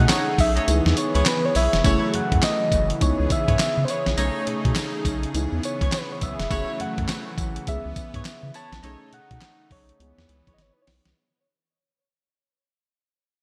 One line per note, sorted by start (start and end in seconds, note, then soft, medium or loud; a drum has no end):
0.00 1.80 C#3 medium
0.00 0.65 A3 medium
0.00 0.67 A3 medium
0.00 0.66 C#4 medium
0.00 0.66 D#4 medium
0.00 0.67 D#4 medium
0.00 0.67 G#4 medium
0.00 1.81 G#4 medium
0.00 0.42 F#5 loud
0.09 0.27 D#4 medium
0.09 0.27 G#4 medium
0.09 0.27 A4 medium
0.09 0.27 C#5 medium
0.09 snare loud
0.09 clap medium
0.09 closed hi-hat medium
0.09 tambourine medium
0.38 0.59 B1 loud
0.38 0.97 E5 loud
0.38 kick medium
0.38 open hi-hat medium
0.38 tambourine medium
0.56 0.67 D#4 medium
0.56 0.67 G#4 medium
0.56 0.68 A4 medium
0.56 0.68 C#5 medium
0.56 closed hi-hat medium
0.67 0.81 C#2 loud
0.67 1.83 E3 medium
0.67 1.82 B3 medium
0.67 1.83 B3 medium
0.67 1.82 D#4 medium
0.67 1.82 E4 medium
0.67 1.83 G#4 medium
0.67 closed hi-hat medium
0.67 tambourine medium
0.86 0.94 E2 medium
0.86 snare medium
0.97 1.29 C#5 medium
0.97 closed hi-hat medium
0.97 tambourine medium
1.15 1.23 C#2 loud
1.15 1.26 E4 medium
1.15 1.26 G#4 medium
1.15 1.26 B4 medium
1.15 1.26 C#5 medium
1.15 closed hi-hat medium
1.26 1.47 B4 loud
1.26 snare loud
1.26 clap loud
1.26 closed hi-hat medium
1.26 tambourine loud
1.45 1.58 C#5 loud
1.55 1.68 B1 medium
1.55 1.73 E4 medium
1.55 1.73 G#4 medium
1.55 1.73 B4 medium
1.55 1.73 C#5 medium
1.55 2.17 E5 loud
1.55 open hi-hat medium
1.55 tambourine medium
1.73 1.82 F1 medium
1.73 snare medium
1.73 closed hi-hat medium
1.84 1.97 F#1 loud
1.84 11.13 C#3 medium
1.84 4.15 E3 medium
1.84 3.00 F#3 medium
1.84 2.98 A3 medium
1.84 3.00 A3 medium
1.84 2.99 C#4 medium
1.84 2.12 E4 medium
1.84 2.99 E4 medium
1.84 2.12 F#4 medium
1.84 3.00 G#4 medium
1.84 2.12 A4 medium
1.84 2.12 C#5 loud
1.84 kick loud
1.84 closed hi-hat medium
1.84 tambourine medium
2.14 2.21 F#2 soft
2.14 2.45 F#5 loud
2.14 closed hi-hat medium
2.32 2.40 F#2 loud
2.32 kick loud
2.32 closed hi-hat medium
2.43 3.02 D#5 loud
2.43 snare loud
2.43 clap medium
2.43 closed hi-hat medium
2.43 tambourine medium
2.72 2.93 F#1 loud
2.72 kick loud
2.72 closed hi-hat medium
2.72 tambourine medium
2.90 closed hi-hat medium
3.00 3.14 C#2 medium
3.00 4.15 B3 medium
3.00 4.17 B3 medium
3.00 4.15 D#4 medium
3.00 4.16 E4 medium
3.00 6.47 G#4 medium
3.00 4.16 G#4 medium
3.00 3.34 C#5 loud
3.00 kick loud
3.00 closed hi-hat medium
3.00 tambourine medium
3.19 3.27 C#2 medium
3.30 3.60 E5 loud
3.30 kick medium
3.30 closed hi-hat medium
3.30 tambourine medium
3.48 3.56 G#2 loud
3.48 3.59 E4 medium
3.48 3.59 G#4 medium
3.48 3.59 B4 medium
3.48 3.59 C#5 medium
3.48 kick loud
3.48 closed hi-hat medium
3.59 3.86 E5 medium
3.59 snare loud
3.59 clap loud
3.59 closed hi-hat medium
3.59 tambourine loud
3.77 3.85 C#3 loud
3.85 4.06 E4 medium
3.85 4.06 G#4 medium
3.85 3.92 C5 medium
3.85 closed hi-hat medium
3.85 tambourine medium
3.89 4.06 B4 medium
3.89 4.06 C#5 medium
3.89 4.48 C#5 medium
4.06 4.15 A#1 medium
4.06 snare medium
4.06 closed hi-hat medium
4.17 4.30 B1 loud
4.17 5.32 A3 medium
4.17 5.33 A3 medium
4.17 5.32 C#4 medium
4.17 4.45 D#4 loud
4.17 5.33 D#4 medium
4.17 5.32 D#4 medium
4.17 4.45 G#4 medium
4.17 5.33 G#4 medium
4.17 4.45 A4 medium
4.17 4.45 C#5 loud
4.17 closed hi-hat medium
4.17 tambourine medium
4.47 4.54 B2 soft
4.47 closed hi-hat medium
4.65 4.73 B2 loud
4.65 kick loud
4.65 closed hi-hat medium
4.76 snare loud
4.76 clap medium
4.76 closed hi-hat medium
4.76 tambourine medium
5.05 5.26 B1 loud
5.05 kick loud
5.05 closed hi-hat medium
5.05 tambourine medium
5.23 closed hi-hat medium
5.34 5.47 C#2 loud
5.34 8.80 E3 medium
5.34 6.48 B3 medium
5.34 6.49 B3 medium
5.34 6.49 D#4 medium
5.34 6.49 E4 medium
5.34 6.49 G#4 medium
5.34 closed hi-hat medium
5.34 tambourine medium
5.52 5.60 E2 medium
5.63 5.96 C#5 medium
5.63 closed hi-hat medium
5.63 tambourine medium
5.81 5.89 C#2 loud
5.81 5.92 E4 medium
5.81 5.92 G#4 medium
5.81 5.92 B4 medium
5.81 5.92 C#5 medium
5.81 kick loud
5.81 closed hi-hat medium
5.92 6.14 B4 medium
5.92 snare loud
5.92 clap medium
5.92 closed hi-hat medium
5.92 tambourine loud
6.12 6.25 C#5 medium
6.21 6.35 B1 medium
6.21 6.83 E5 loud
6.21 kick medium
6.21 closed hi-hat medium
6.21 tambourine medium
6.39 6.47 F1 medium
6.39 snare medium
6.39 closed hi-hat medium
6.50 6.64 F#1 loud
6.50 7.66 F#3 medium
6.50 7.65 A3 medium
6.50 7.66 A3 medium
6.50 7.65 C#4 medium
6.50 6.78 E4 loud
6.50 7.65 E4 medium
6.50 6.78 F#4 medium
6.50 7.66 G#4 medium
6.50 6.78 A4 medium
6.50 6.78 C#5 loud
6.50 kick loud
6.50 closed hi-hat medium
6.50 tambourine medium
6.80 6.87 F#2 soft
6.80 7.68 F#5 loud
6.80 closed hi-hat medium
6.98 7.06 F#2 loud
6.98 kick loud
6.98 closed hi-hat medium
7.09 snare loud
7.09 clap medium
7.09 closed hi-hat medium
7.09 tambourine medium
7.38 7.59 A1 medium
7.38 kick loud
7.38 closed hi-hat medium
7.38 tambourine medium
7.56 closed hi-hat medium
7.67 7.80 C#2 loud
7.67 8.81 B3 medium
7.67 8.82 B3 medium
7.67 8.82 C#4 medium
7.67 8.82 E4 medium
7.67 8.82 G#4 medium
7.67 8.57 E5 loud
7.67 kick loud
7.67 closed hi-hat medium
7.67 tambourine medium
7.85 7.93 C#2 medium
7.96 kick medium
7.96 closed hi-hat medium
7.96 tambourine medium
8.14 8.22 G#2 medium
8.14 8.25 E4 medium
8.14 8.25 G#4 medium
8.14 8.25 B4 medium
8.14 8.25 C#5 medium
8.14 kick loud
8.14 closed hi-hat medium
8.25 snare loud
8.25 clap medium
8.25 closed hi-hat medium
8.25 tambourine loud
8.43 8.51 C#3 loud
8.54 8.72 E4 medium
8.54 8.72 G#4 medium
8.54 8.72 B4 medium
8.54 8.72 C#5 medium
8.54 9.15 A5 loud
8.54 closed hi-hat medium
8.54 tambourine medium
8.72 8.80 A#1 medium
8.72 snare medium
8.72 closed hi-hat medium
8.83 8.96 B1 medium
8.83 9.97 A3 medium
8.83 9.99 A3 medium
8.83 9.98 C#4 medium
8.83 9.11 D#4 medium
8.83 9.99 D#4 medium
8.83 9.98 D#4 medium
8.83 9.11 G#4 medium
8.83 9.99 G#4 medium
8.83 9.11 A4 medium
8.83 9.11 C#5 loud
8.83 closed hi-hat medium
9.12 9.20 B2 medium
9.12 9.74 F#5 loud
9.12 closed hi-hat medium
9.31 9.39 B2 loud
9.31 kick loud
9.31 closed hi-hat medium
9.41 snare loud
9.41 clap medium
9.41 closed hi-hat medium
9.71 9.92 B1 medium
9.71 10.55 C#5 loud
9.71 kick medium
9.71 open hi-hat medium
9.89 closed hi-hat medium
10.00 10.13 C#2 loud
10.00 11.16 E3 medium
10.00 11.14 B3 medium
10.00 11.16 B3 medium
10.00 11.14 D#4 medium
10.00 11.15 E4 medium
10.00 11.15 G#4 medium
10.00 closed hi-hat medium
10.18 10.26 E2 medium
10.18 snare medium
10.29 10.42 C#2 loud
10.29 closed hi-hat medium
10.47 10.55 B1 loud
10.47 10.58 E4 medium
10.47 10.58 G#4 medium
10.47 10.58 B4 medium
10.47 10.58 C#5 medium
10.47 kick loud
10.47 closed hi-hat medium
10.54 10.63 D#5 medium
10.58 10.71 G#1 loud
10.58 10.75 C#5 medium
10.58 snare medium
10.58 closed hi-hat medium
10.74 10.84 B4 medium
10.82 10.88 C#5 medium
10.87 11.00 B1 medium
10.87 snare medium
10.87 open hi-hat medium
11.05 11.14 C2 medium
11.05 snare loud
11.05 closed hi-hat medium